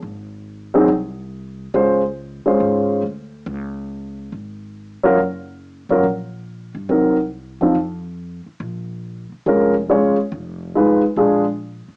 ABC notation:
X:1
M:4/4
L:1/8
Q:"Swing" 1/4=140
K:Db
V:1 name="Grand piano"
z3 [G,CEA] z4 | [A,DFc] z2 [A,DFc]3 z2 | z6 z [G,DFB] | z3 [G,DFB] z4 |
[G,CEB] z2 [F,CEF] z4 | z4 [A,DFB] z [A,DFd] z | z2 [A,EF_c] z [A,=DFA] z3 |]
V:2 name="Upright bass" clef=bass
A,,,4 C,,4 | D,,3 z A,,,2 =D,,2 | D,,4 A,,,3 z | G,,,3 =G,,, B,,,3 =G,, |
C,,3 =E,, F,,3 z | B,,,3 z F,,,3 z | F,,,3 z B,,,3 z |]